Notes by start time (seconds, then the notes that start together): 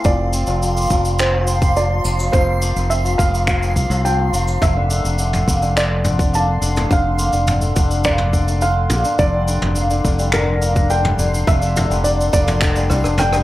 Already playing: A3 C4 C6
0.04 F1 F3 D5, kick, cabasa
0.33 C4, cabasa
0.47 F1 F3, cabasa
0.62 F3, cabasa
0.76 A#3, cabasa
0.82 cabasa
0.86 cabasa
0.90 F1 F3, kick, cabasa
1.05 cabasa
1.19 C4 C5, finger snap, cabasa
1.33 F3
1.47 F3, cabasa
1.62 A#3, kick, cabasa
1.76 F3 D5, cabasa
2.04 F1 C4, cabasa
2.19 F3, cabasa
2.32 F1 F3 C5, kick, cabasa
2.48 A#3
2.61 F3, cabasa
2.76 F1, cabasa
2.90 C4 E5, cabasa
3.04 F3, cabasa
3.18 F1 F3 F5, kick, cabasa
3.34 A#3, cabasa
3.47 F3, finger snap, kick, cabasa
3.63 cabasa
3.76 C2 C4, kick, cabasa
3.90 C2 F3, cabasa
4.05 F3 G5, cabasa
4.19 A#3
4.33 F1 F3, cabasa
4.48 cabasa
4.62 F1 A#3 E5, kick, mid tom, cabasa
4.76 D3
4.90 D3, cabasa
5.04 F1 A3, cabasa
5.19 D3, cabasa
5.33 mid tom, cabasa
5.48 F1 A#3, kick, cabasa
5.62 D3, cabasa
5.76 D3 D5, finger snap, cabasa
5.90 A3
6.04 D3, mid tom, cabasa
6.19 kick, cabasa
6.33 A#3 A5, cabasa
6.47 D3
6.61 F1 D3, cabasa
6.75 A3, mid tom, cabasa
6.89 F1 D3 F5, kick, cabasa
7.19 A#3, cabasa
7.33 F1 D3, cabasa
7.47 D3, mid tom, cabasa
7.61 A3, cabasa
7.76 F1 D3, kick, cabasa
7.91 cabasa
8.04 A#3 D5, finger snap, kick, cabasa
8.18 D3, mid tom
8.33 D3, kick, cabasa
8.48 A3, cabasa
8.61 D3 F5, cabasa
8.90 A#1 A#3, mid tom, cabasa
9.04 D3, cabasa
9.19 F1 D3 D5, kick, cabasa
9.34 G3
9.48 D3, cabasa
9.62 F1, mid tom
9.76 A#3, cabasa
9.90 D3, cabasa
10.05 F1 D3, kick, cabasa
10.19 G3, cabasa
10.32 D3 A#4, finger snap, mid tom, cabasa
10.61 A#3, cabasa
10.76 D3, kick, cabasa
10.90 D3 G5, cabasa
11.04 G3, mid tom
11.19 F1 D3, cabasa
11.34 cabasa
11.47 F1 A#3 E5, kick, cabasa
11.61 D3, cabasa
11.76 D3, mid tom, cabasa
11.90 F1 G3, cabasa
12.04 D3 D5, cabasa
12.21 cabasa
12.33 F1 A#3 D5, kick, cabasa
12.47 D3, mid tom, cabasa
12.61 D3, finger snap, kick, cabasa
12.76 G3, cabasa
12.90 C2 D3, kick, cross-stick, cabasa
13.04 F1 D4, cross-stick, cabasa
13.18 D3 G5, cross-stick, mid tom, cabasa
13.33 G3, cross-stick, cabasa